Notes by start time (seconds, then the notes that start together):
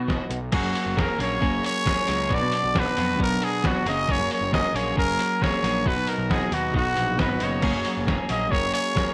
Already playing: B2
0.08 B2 F#3 B3 D#4 F#4, kick, snare
0.30 B1 B2 F#3, closed hi-hat
0.52 F#1 F#3 A#3 C#4 F#4 G#4, kick, crash
0.63 F#2
0.75 open hi-hat
0.86 F#1
0.96 F#3 A#3 C#4 G#4, kick, snare
1.00 A#4
1.18 A#1 F#3 A#3 C#4 G#4 C#5, open hi-hat
1.41 F#1 F#3 A#3 C#4 G#4, kick
1.64 C#5, open hi-hat
1.85 F#3 A#3 C#4 G#4, kick, snare
2.07 C#2 F#3 A#3 C#4 G#4, open hi-hat
2.29 B1 B2 F#3 B3 D4 F#4, kick
2.34 D5
2.42 B2
2.52 open hi-hat
2.64 B1
2.74 B2 F#3 B3 D4 F#4, kick, snare
2.79 B4
2.96 F2 B2 F#3 B3 D4 F#4, open hi-hat
3.19 B1 B2 F#3 B3 D4 F#4 A#4, kick
3.42 G#4, open hi-hat
3.62 B2 F#3 B3 D4 F#4, kick, snare
3.67 F#4
3.85 F#1 F#3 A#3 C#4 G#4 D#5, snare, open hi-hat
4.08 F#1 F#3 A#3 C#4 G#4 C#5, kick
4.19 F#2
4.31 C#5, open hi-hat
4.41 F#1
4.52 F#3 A#3 C#4 G#4 D#5, kick, snare
4.74 A#1 F#3 A#3 C#4 G#4 C#5, open hi-hat
4.97 F#1 F#3 A#3 C#4 G#4 A#4, kick
5.19 open hi-hat
5.41 F#3 A#3 C#4 G#4 C#5, kick, snare
5.63 A#1 F#3 A#3 C#4 G#4, open hi-hat
5.85 B1 B2 F#3 B3 D#4 F#4 B4, kick
5.96 B2
6.07 A#4, open hi-hat
6.18 B1
6.29 B2 F#3 B3 D#4 F#4 G#4, kick, snare
6.51 D#2 B2 F#3 B3 D#4 F#4, open hi-hat
6.74 B1 B2 F#3 B3 D#4 F#4, kick
6.96 A#1, open hi-hat
7.18 G#1 B2 F#3 B3 D#4 F#4 B4, kick, snare
7.40 F#1 B2 F#3 B3 D#4 F#4, snare, open hi-hat
7.44 C#5
7.62 F#1 F#3 A#3 C#4 G#4, kick, crash
7.74 F#2
7.85 open hi-hat
7.97 F#1
8.07 F#3 A#3 C#4 G#4, kick, snare
8.29 A#1 F#3 A#3 C#4 G#4 D#5, open hi-hat
8.51 F#1 F#3 A#3 C#4 G#4 C#5, kick
8.74 C#5, open hi-hat
8.94 F#3 A#3 C#4 G#4, kick, snare